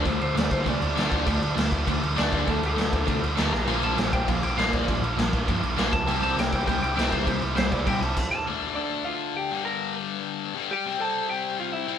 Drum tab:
CC |xxxxxxxx|xxxxxxxx|xxxxxxx-|xxxxxxxx|
SD |--o---o-|--o---o-|--o---oo|--o---o-|
BD |o--oo--o|o--oo--o|o--oo---|---oo--o|

CC |xxxxxxxx|xxxxxxxx|xxxxxxx-|--------|
SD |--o---o-|--o---o-|--o-----|--------|
BD |o--oo--o|---oo--o|o--oo-o-|--------|

CC |--------|--------|
SD |--------|--------|
BD |--------|--------|